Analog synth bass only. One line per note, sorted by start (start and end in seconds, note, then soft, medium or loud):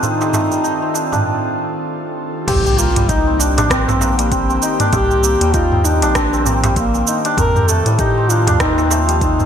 2.48 3.59 C2 loud
3.57 4.59 A#1 loud
4.93 5.37 C2 loud
5.41 6.04 D#2 loud
6.02 7.04 A#1 loud
7.38 7.82 F2 loud
7.86 8.49 A2 loud
8.47 9.46 D#2 loud